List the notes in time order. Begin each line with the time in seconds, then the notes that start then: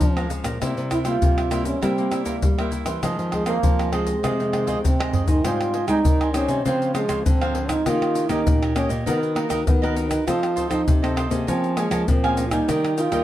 Already playing: D#4
0.01 F2 F3, pandeiro, shaker, surdo
0.17 F3 G#3 C#4 C#5 F5 A#5, pandeiro, tamborim, shaker
0.29 G#4 C#5 F5 A#5, pandeiro, shaker
0.44 A#2 C#5 F5 A#5, pandeiro, tamborim, shaker, surdo
0.61 C3 G3 A#3 E4 A#4 C5 E5, pandeiro, tamborim, shaker, surdo
0.77 C3, pandeiro, shaker
0.90 E4 A#4 C5 E5, pandeiro, tamborim, shaker, surdo
1.04 G3 A#3 E4 F4 A#4 C5 E5, pandeiro, tamborim, shaker
1.22 G2 C3, pandeiro, shaker, surdo
1.37 A#4 C5 E5, pandeiro, tamborim, shaker
1.51 G3 A#3 E4 A#4 C5 E5, pandeiro, tamborim, shaker
1.65 C#4 A#4 C5 E5, pandeiro, shaker, surdo
1.81 C3 G3 A#3 C4 E4 A#4 C5 E5, pandeiro, tamborim, shaker, surdo
1.98 G3 A#3 E4, pandeiro, shaker
2.11 G3 A#3 E4 A#4 C5 E5, pandeiro, tamborim, shaker
2.25 A#3 E4 A#4 C5 E5, pandeiro, shaker, surdo
2.42 G3, pandeiro, shaker, surdo
2.58 G3 A#3 E4 A#4 C5 E5, pandeiro, tamborim, shaker
2.71 E4 A#4 C5 E5, pandeiro, shaker
2.85 E3 A#4 C5 E5, pandeiro, tamborim, shaker, surdo
3.02 F2 D#3 F3 G#3 C4 F4 G#4 C5 D#5, pandeiro, tamborim, shaker, surdo
3.19 F3, pandeiro, shaker
3.31 G#3 F4 G#4 C5 D#5, pandeiro, tamborim, surdo
3.46 D#3 G#3 A#3 C4 F4 G#4 C5 D#5, pandeiro, tamborim, shaker
3.63 C3 F3, pandeiro, shaker, surdo
3.79 G#4 C5 D#5, pandeiro, tamborim, shaker
3.92 D#3 G#3 C4 F4 G#4 C5 D#5, pandeiro, tamborim
4.06 G#4 C5 D#5, pandeiro, shaker, surdo
4.23 F2 C3 D#3 G#3 C4 F4 G#4 C5 D#5, pandeiro, tamborim, shaker, surdo
4.39 D#3 G#3 C4, pandeiro, shaker
4.52 D#3 G#3 C4 F4 G#4 C5 D#5, pandeiro, tamborim
4.67 F4 G#4 C5 D#5, pandeiro, shaker, surdo
4.83 C3 C4, pandeiro, shaker, surdo
4.99 D#3 G#3 C4 G#4 C5 D#5, pandeiro, tamborim, shaker
5.13 F4 G#4 C5 D#5, surdo, pandeiro
5.27 D#3 D#4 G#4 C5 D#5, pandeiro, shaker, surdo
5.44 G#2 G3 C4 D#4 F4 G4 C5 D#5 G#5, pandeiro, tamborim, shaker, surdo
5.61 pandeiro, tamborim, shaker
5.73 G4 C5 D#5 G#5, pandeiro
5.87 G3 G#3 C4 D#4 G4 C5 D#5 G#5, pandeiro, tamborim, shaker, surdo
6.05 D#3, pandeiro, shaker, surdo
6.21 C5 D#5 G#5, pandeiro, tamborim, shaker
6.34 G3 C4 C#4 D#4 G4 C5 D#5 G#5, pandeiro, tamborim, shaker
6.48 C3 C5 D#5 G#5, pandeiro, shaker, surdo
6.65 C#3 F3 G#3 C4 F4 C5 C#5 F5, pandeiro, shaker, surdo
6.82 pandeiro, shaker
6.94 F3 G#3 C4 F4 C5 C#5 F5, pandeiro, tamborim, shaker
7.09 C#3 F4 C5 C#5 F5, pandeiro, tamborim, shaker, surdo
7.26 G#2 D3 C4, pandeiro, shaker, surdo
7.41 F3 G#3 C4 C5 C#5 F5, pandeiro, tamborim, shaker
7.54 F4 C5 C#5 F5, pandeiro
7.69 D#4 C5 C#5 F5, pandeiro, tamborim, shaker, surdo
7.86 D#3 A#3 C#4 D#4 F4 G4 C#5 D#5, pandeiro, tamborim, shaker, surdo
8.02 pandeiro, tamborim, shaker
8.15 D#4 G4 C#5 D#5, pandeiro, shaker
8.29 D#3 A#3 C#4 D#4 G4 C#5 D#5, pandeiro, tamborim, shaker, surdo
8.46 A#2, pandeiro, shaker, surdo
8.62 G4 C#5 D#5, pandeiro, tamborim, shaker
8.75 A#3 C#4 D#4 G4 C#5 D#5, pandeiro, tamborim, shaker
8.89 A#2 G4 C#5 D#5, pandeiro, shaker, surdo
9.06 D#3 B3 D#4 F#4 A#4 B4 D#5, pandeiro, shaker, surdo
9.23 pandeiro, shaker
9.35 A#3 D#4 F#4 A#4 B4 D#5, pandeiro, tamborim
9.49 D#3 D#4 A#4 B4 D#5, pandeiro, tamborim, shaker, surdo
9.67 D#3 B3, pandeiro, shaker, surdo
9.82 B3 F#4 A#4 B4 D#5, pandeiro, tamborim, shaker
9.96 D#4 A#4 B4 D#5, pandeiro, shaker
10.09 D#4 A#4 B4 D#5, pandeiro, tamborim, shaker, surdo
10.27 F3 C4 D#4 F4 A4 C5 D#5, pandeiro, tamborim, shaker, surdo
10.43 pandeiro, tamborim, shaker
10.56 C4 D#4 F4 A4 C5 D#5, pandeiro, shaker, surdo
10.70 F3 D#4 F4 A4 C5 D#5, pandeiro, tamborim, shaker, surdo
10.87 C3, pandeiro, shaker, surdo
11.02 C4 D#4 A4 C5 D#5, pandeiro, tamborim, shaker
11.16 F4 A4 C5 D#5, pandeiro, tamborim
11.30 C3 A#3 C#4 G#4 A4 C5 D#5, pandeiro, shaker, surdo
11.47 F3 C4 A#4 C#5 F5 G#5, pandeiro, shaker, surdo
11.64 pandeiro, shaker
11.77 G#3 A#3 C#4 G#4 A#4 C#5 F5 G#5, pandeiro, tamborim, shaker
11.91 F3 A#4 C#5 F5 G#5, pandeiro, tamborim, shaker, surdo
12.08 A#2 F3 C4, pandeiro, shaker, surdo
12.24 A#3 C#4 G#4 C#5 F5 G#5, pandeiro, tamborim, shaker
12.37 A#4 C#5 F5 G#5, pandeiro, shaker
12.46 F4
12.51 G3 A#3 D#4 C#5 F5 G#5, pandeiro, tamborim, shaker, surdo
12.68 D#3 G4 A#4 D#5 G5, pandeiro, tamborim, shaker, surdo
12.85 pandeiro, tamborim, shaker
12.97 F4 G4 A#4 D#5 G5, pandeiro, shaker
13.11 D#3 G3 A#3 D#4 G4 A#4 D#5 G5, pandeiro, tamborim, shaker, surdo